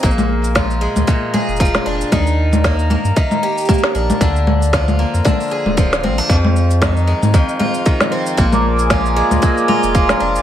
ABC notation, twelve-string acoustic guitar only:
X:1
M:4/4
L:1/16
Q:"Swing 16ths" 1/4=115
K:Bbmix
V:1 name="Twelve-string acoustic guitar" clef=bass
B,,4 F,2 A,2 B,,2 A2 F,2 D2 | E,4 B,2 B,2 E,2 G2 B,2 D2 | D,4 F,2 B,2 D,2 A2 F,2 C D | F,,4 E,2 A,2 F,,2 F2 E,2 C2 |
B,,4 F,2 A,2 B,,2 F2 F,2 D2 |]